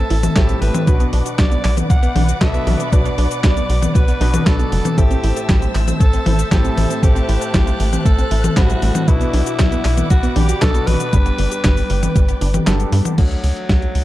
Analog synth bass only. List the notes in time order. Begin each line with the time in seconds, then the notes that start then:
0.10 A1
0.36 A1
0.62 A1
0.87 B1
1.13 B1
1.39 B1
1.65 B1
1.90 B1
2.16 B1
2.41 B1
2.67 B1
2.92 B1
3.18 B1
3.44 B1
3.69 B1
3.95 B1
4.21 B1
4.46 B1
4.72 F#1
4.98 A1
5.24 A1
5.49 A1
5.75 A1
6.00 A1
6.26 A1
6.52 A1
6.77 A1
7.03 A1
7.29 A1
7.54 A1
7.80 A1
8.05 A1
8.31 A1
8.57 A1
8.82 A1
9.08 B1
9.34 B1
9.59 B1
9.85 B1
10.10 B1
10.36 B1
10.62 B1
10.87 B1
11.13 G1
11.39 G1
11.64 G1
11.90 G1
12.16 G1
12.41 G1
12.67 G1
12.92 G2
13.18 D2
13.44 D2
13.69 D2
13.95 D2